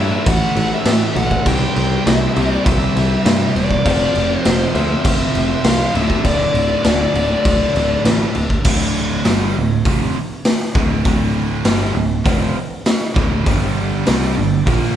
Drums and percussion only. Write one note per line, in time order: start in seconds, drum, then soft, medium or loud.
0.26 kick loud
0.26 crash medium
0.56 crash medium
0.85 snare loud
0.85 crash medium
1.16 crash medium
1.31 kick medium
1.46 kick loud
1.46 crash medium
1.76 crash medium
2.07 snare loud
2.07 crash medium
2.36 crash medium
2.66 kick loud
2.66 crash medium
2.97 crash medium
3.26 snare loud
3.26 crash medium
3.56 crash medium
3.71 kick medium
3.86 kick loud
3.86 crash medium
4.15 crash medium
4.45 snare loud
4.45 crash medium
4.75 crash medium
5.05 kick loud
5.05 crash loud
5.35 crash medium
5.64 snare loud
5.64 crash medium
5.95 crash medium
6.10 kick medium
6.25 kick loud
6.25 crash medium
6.55 crash medium
6.84 snare loud
6.84 crash medium
7.15 crash medium
7.45 kick loud
7.45 crash medium
7.76 crash medium
8.05 snare loud
8.05 crash medium
8.35 crash medium
8.50 kick medium
8.65 kick loud
8.65 crash loud
9.25 snare loud
9.25 open hi-hat medium
9.85 kick loud
9.85 open hi-hat medium
10.45 snare loud
10.45 open hi-hat medium
10.75 kick loud
11.05 kick loud
11.05 open hi-hat medium
11.65 snare loud
11.65 open hi-hat medium
12.26 kick loud
12.26 open hi-hat medium
12.86 snare loud
12.86 open hi-hat medium
13.16 kick loud
13.16 snare soft
13.46 kick loud
13.46 open hi-hat medium
14.06 snare loud
14.06 open hi-hat medium
14.67 kick loud
14.67 open hi-hat medium
14.83 snare soft